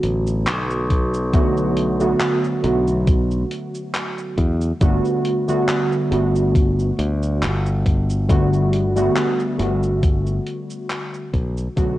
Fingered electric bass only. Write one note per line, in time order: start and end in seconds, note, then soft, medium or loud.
0.03 0.47 A1 medium
0.47 2.12 B1 loud
2.64 3.43 B1 loud
4.38 4.71 E2 loud
4.81 4.99 G1 loud
6.12 6.91 G1 loud
6.99 7.44 D2 medium
7.42 9.08 G1 loud
9.60 10.38 G1 loud
11.34 11.67 B1 medium
11.77 11.95 B1 loud